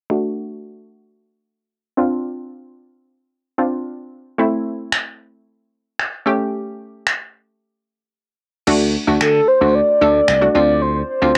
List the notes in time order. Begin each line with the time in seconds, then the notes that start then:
0.10 A3 D4 F#4
1.97 C4 D4 F4
3.58 C4 D4 F4
4.38 A3 C4 E4
4.92 finger snap
6.00 finger snap
6.26 A3 C#4 G4
7.07 finger snap
8.67 D2 A3 D4 F#4, crash
9.07 D2 A3 D4 F#4
9.21 D3 A4, finger snap
9.48 C5
9.61 D2 A3 D4 F#4
9.75 D5
10.01 D2 A3 D4 A4
10.28 C2, finger snap
10.41 A3 D4 F#4
10.55 D2 C4 D4 F4 D5
10.82 C5
11.09 C5
11.22 D2 C4 D4 F4